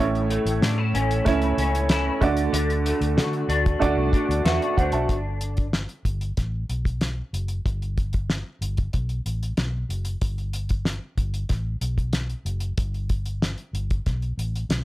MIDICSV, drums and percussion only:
0, 0, Header, 1, 2, 480
1, 0, Start_track
1, 0, Tempo, 640342
1, 1901, Time_signature, 4, 2, 24, 8
1, 11124, End_track
2, 0, Start_track
2, 0, Title_t, "Drums"
2, 114, Note_on_c, 9, 42, 32
2, 189, Note_off_c, 9, 42, 0
2, 229, Note_on_c, 9, 42, 77
2, 304, Note_off_c, 9, 42, 0
2, 349, Note_on_c, 9, 42, 57
2, 424, Note_off_c, 9, 42, 0
2, 468, Note_on_c, 9, 38, 98
2, 473, Note_on_c, 9, 42, 82
2, 543, Note_off_c, 9, 38, 0
2, 548, Note_off_c, 9, 42, 0
2, 711, Note_on_c, 9, 42, 75
2, 786, Note_off_c, 9, 42, 0
2, 831, Note_on_c, 9, 42, 45
2, 906, Note_off_c, 9, 42, 0
2, 944, Note_on_c, 9, 42, 77
2, 945, Note_on_c, 9, 38, 41
2, 948, Note_on_c, 9, 36, 92
2, 1019, Note_off_c, 9, 42, 0
2, 1020, Note_off_c, 9, 38, 0
2, 1023, Note_off_c, 9, 36, 0
2, 1062, Note_on_c, 9, 42, 34
2, 1137, Note_off_c, 9, 42, 0
2, 1187, Note_on_c, 9, 42, 74
2, 1262, Note_off_c, 9, 42, 0
2, 1311, Note_on_c, 9, 42, 52
2, 1386, Note_off_c, 9, 42, 0
2, 1419, Note_on_c, 9, 42, 88
2, 1422, Note_on_c, 9, 38, 107
2, 1494, Note_off_c, 9, 42, 0
2, 1497, Note_off_c, 9, 38, 0
2, 1661, Note_on_c, 9, 36, 92
2, 1664, Note_on_c, 9, 42, 63
2, 1736, Note_off_c, 9, 36, 0
2, 1739, Note_off_c, 9, 42, 0
2, 1774, Note_on_c, 9, 42, 53
2, 1849, Note_off_c, 9, 42, 0
2, 1902, Note_on_c, 9, 42, 100
2, 1977, Note_off_c, 9, 42, 0
2, 2024, Note_on_c, 9, 42, 34
2, 2099, Note_off_c, 9, 42, 0
2, 2143, Note_on_c, 9, 42, 77
2, 2218, Note_off_c, 9, 42, 0
2, 2260, Note_on_c, 9, 42, 48
2, 2335, Note_off_c, 9, 42, 0
2, 2382, Note_on_c, 9, 38, 103
2, 2387, Note_on_c, 9, 42, 79
2, 2457, Note_off_c, 9, 38, 0
2, 2462, Note_off_c, 9, 42, 0
2, 2496, Note_on_c, 9, 42, 31
2, 2571, Note_off_c, 9, 42, 0
2, 2621, Note_on_c, 9, 42, 70
2, 2696, Note_off_c, 9, 42, 0
2, 2744, Note_on_c, 9, 42, 47
2, 2745, Note_on_c, 9, 36, 95
2, 2819, Note_off_c, 9, 42, 0
2, 2820, Note_off_c, 9, 36, 0
2, 2861, Note_on_c, 9, 42, 79
2, 2863, Note_on_c, 9, 36, 78
2, 2936, Note_off_c, 9, 42, 0
2, 2938, Note_off_c, 9, 36, 0
2, 3096, Note_on_c, 9, 36, 86
2, 3102, Note_on_c, 9, 42, 72
2, 3171, Note_off_c, 9, 36, 0
2, 3177, Note_off_c, 9, 42, 0
2, 3230, Note_on_c, 9, 42, 51
2, 3305, Note_off_c, 9, 42, 0
2, 3340, Note_on_c, 9, 42, 89
2, 3344, Note_on_c, 9, 38, 94
2, 3415, Note_off_c, 9, 42, 0
2, 3418, Note_off_c, 9, 38, 0
2, 3465, Note_on_c, 9, 42, 34
2, 3540, Note_off_c, 9, 42, 0
2, 3582, Note_on_c, 9, 36, 85
2, 3585, Note_on_c, 9, 42, 58
2, 3657, Note_off_c, 9, 36, 0
2, 3660, Note_off_c, 9, 42, 0
2, 3688, Note_on_c, 9, 42, 53
2, 3763, Note_off_c, 9, 42, 0
2, 3817, Note_on_c, 9, 36, 90
2, 3817, Note_on_c, 9, 42, 82
2, 3891, Note_off_c, 9, 42, 0
2, 3892, Note_off_c, 9, 36, 0
2, 4054, Note_on_c, 9, 42, 67
2, 4129, Note_off_c, 9, 42, 0
2, 4174, Note_on_c, 9, 42, 46
2, 4183, Note_on_c, 9, 36, 76
2, 4249, Note_off_c, 9, 42, 0
2, 4258, Note_off_c, 9, 36, 0
2, 4297, Note_on_c, 9, 38, 88
2, 4302, Note_on_c, 9, 42, 72
2, 4372, Note_off_c, 9, 38, 0
2, 4377, Note_off_c, 9, 42, 0
2, 4414, Note_on_c, 9, 42, 30
2, 4489, Note_off_c, 9, 42, 0
2, 4535, Note_on_c, 9, 36, 67
2, 4537, Note_on_c, 9, 42, 69
2, 4610, Note_off_c, 9, 36, 0
2, 4612, Note_off_c, 9, 42, 0
2, 4655, Note_on_c, 9, 42, 42
2, 4730, Note_off_c, 9, 42, 0
2, 4776, Note_on_c, 9, 42, 72
2, 4777, Note_on_c, 9, 38, 31
2, 4780, Note_on_c, 9, 36, 73
2, 4851, Note_off_c, 9, 42, 0
2, 4852, Note_off_c, 9, 38, 0
2, 4855, Note_off_c, 9, 36, 0
2, 5019, Note_on_c, 9, 42, 63
2, 5094, Note_off_c, 9, 42, 0
2, 5137, Note_on_c, 9, 36, 72
2, 5146, Note_on_c, 9, 42, 46
2, 5212, Note_off_c, 9, 36, 0
2, 5221, Note_off_c, 9, 42, 0
2, 5254, Note_on_c, 9, 42, 81
2, 5258, Note_on_c, 9, 38, 82
2, 5329, Note_off_c, 9, 42, 0
2, 5333, Note_off_c, 9, 38, 0
2, 5502, Note_on_c, 9, 42, 53
2, 5577, Note_off_c, 9, 42, 0
2, 5609, Note_on_c, 9, 42, 42
2, 5684, Note_off_c, 9, 42, 0
2, 5739, Note_on_c, 9, 36, 91
2, 5741, Note_on_c, 9, 42, 84
2, 5814, Note_off_c, 9, 36, 0
2, 5815, Note_off_c, 9, 42, 0
2, 5864, Note_on_c, 9, 42, 32
2, 5939, Note_off_c, 9, 42, 0
2, 5979, Note_on_c, 9, 36, 81
2, 5979, Note_on_c, 9, 42, 66
2, 6053, Note_off_c, 9, 42, 0
2, 6054, Note_off_c, 9, 36, 0
2, 6093, Note_on_c, 9, 42, 46
2, 6104, Note_on_c, 9, 36, 71
2, 6168, Note_off_c, 9, 42, 0
2, 6179, Note_off_c, 9, 36, 0
2, 6219, Note_on_c, 9, 38, 91
2, 6224, Note_on_c, 9, 42, 69
2, 6294, Note_off_c, 9, 38, 0
2, 6299, Note_off_c, 9, 42, 0
2, 6461, Note_on_c, 9, 42, 65
2, 6536, Note_off_c, 9, 42, 0
2, 6577, Note_on_c, 9, 42, 38
2, 6584, Note_on_c, 9, 36, 76
2, 6651, Note_off_c, 9, 42, 0
2, 6659, Note_off_c, 9, 36, 0
2, 6696, Note_on_c, 9, 42, 67
2, 6702, Note_on_c, 9, 36, 72
2, 6771, Note_off_c, 9, 42, 0
2, 6777, Note_off_c, 9, 36, 0
2, 6815, Note_on_c, 9, 42, 31
2, 6890, Note_off_c, 9, 42, 0
2, 6941, Note_on_c, 9, 42, 62
2, 7016, Note_off_c, 9, 42, 0
2, 7066, Note_on_c, 9, 42, 45
2, 7141, Note_off_c, 9, 42, 0
2, 7176, Note_on_c, 9, 42, 79
2, 7180, Note_on_c, 9, 38, 90
2, 7251, Note_off_c, 9, 42, 0
2, 7254, Note_off_c, 9, 38, 0
2, 7423, Note_on_c, 9, 42, 55
2, 7498, Note_off_c, 9, 42, 0
2, 7531, Note_on_c, 9, 42, 47
2, 7606, Note_off_c, 9, 42, 0
2, 7657, Note_on_c, 9, 42, 87
2, 7659, Note_on_c, 9, 36, 94
2, 7732, Note_off_c, 9, 42, 0
2, 7734, Note_off_c, 9, 36, 0
2, 7781, Note_on_c, 9, 42, 30
2, 7856, Note_off_c, 9, 42, 0
2, 7896, Note_on_c, 9, 42, 65
2, 7971, Note_off_c, 9, 42, 0
2, 8015, Note_on_c, 9, 42, 46
2, 8025, Note_on_c, 9, 36, 70
2, 8090, Note_off_c, 9, 42, 0
2, 8100, Note_off_c, 9, 36, 0
2, 8136, Note_on_c, 9, 38, 83
2, 8141, Note_on_c, 9, 42, 66
2, 8211, Note_off_c, 9, 38, 0
2, 8216, Note_off_c, 9, 42, 0
2, 8378, Note_on_c, 9, 36, 74
2, 8378, Note_on_c, 9, 42, 69
2, 8453, Note_off_c, 9, 36, 0
2, 8453, Note_off_c, 9, 42, 0
2, 8499, Note_on_c, 9, 42, 43
2, 8574, Note_off_c, 9, 42, 0
2, 8614, Note_on_c, 9, 42, 64
2, 8615, Note_on_c, 9, 38, 34
2, 8622, Note_on_c, 9, 36, 73
2, 8689, Note_off_c, 9, 42, 0
2, 8690, Note_off_c, 9, 38, 0
2, 8697, Note_off_c, 9, 36, 0
2, 8856, Note_on_c, 9, 42, 65
2, 8931, Note_off_c, 9, 42, 0
2, 8978, Note_on_c, 9, 36, 76
2, 8981, Note_on_c, 9, 42, 45
2, 9053, Note_off_c, 9, 36, 0
2, 9056, Note_off_c, 9, 42, 0
2, 9090, Note_on_c, 9, 42, 85
2, 9094, Note_on_c, 9, 38, 90
2, 9165, Note_off_c, 9, 42, 0
2, 9169, Note_off_c, 9, 38, 0
2, 9216, Note_on_c, 9, 42, 31
2, 9291, Note_off_c, 9, 42, 0
2, 9340, Note_on_c, 9, 42, 54
2, 9415, Note_off_c, 9, 42, 0
2, 9448, Note_on_c, 9, 42, 49
2, 9523, Note_off_c, 9, 42, 0
2, 9576, Note_on_c, 9, 42, 87
2, 9579, Note_on_c, 9, 36, 107
2, 9651, Note_off_c, 9, 42, 0
2, 9654, Note_off_c, 9, 36, 0
2, 9702, Note_on_c, 9, 42, 31
2, 9777, Note_off_c, 9, 42, 0
2, 9816, Note_on_c, 9, 42, 63
2, 9819, Note_on_c, 9, 36, 77
2, 9891, Note_off_c, 9, 42, 0
2, 9894, Note_off_c, 9, 36, 0
2, 9936, Note_on_c, 9, 42, 47
2, 10011, Note_off_c, 9, 42, 0
2, 10063, Note_on_c, 9, 38, 96
2, 10067, Note_on_c, 9, 42, 76
2, 10138, Note_off_c, 9, 38, 0
2, 10142, Note_off_c, 9, 42, 0
2, 10177, Note_on_c, 9, 42, 31
2, 10252, Note_off_c, 9, 42, 0
2, 10305, Note_on_c, 9, 42, 59
2, 10380, Note_off_c, 9, 42, 0
2, 10423, Note_on_c, 9, 42, 43
2, 10427, Note_on_c, 9, 36, 75
2, 10498, Note_off_c, 9, 42, 0
2, 10502, Note_off_c, 9, 36, 0
2, 10541, Note_on_c, 9, 42, 68
2, 10542, Note_on_c, 9, 38, 31
2, 10544, Note_on_c, 9, 36, 74
2, 10616, Note_off_c, 9, 42, 0
2, 10617, Note_off_c, 9, 38, 0
2, 10619, Note_off_c, 9, 36, 0
2, 10662, Note_on_c, 9, 42, 28
2, 10737, Note_off_c, 9, 42, 0
2, 10787, Note_on_c, 9, 42, 62
2, 10862, Note_off_c, 9, 42, 0
2, 10910, Note_on_c, 9, 42, 46
2, 10985, Note_off_c, 9, 42, 0
2, 11020, Note_on_c, 9, 42, 82
2, 11024, Note_on_c, 9, 38, 90
2, 11095, Note_off_c, 9, 42, 0
2, 11099, Note_off_c, 9, 38, 0
2, 11124, End_track
0, 0, End_of_file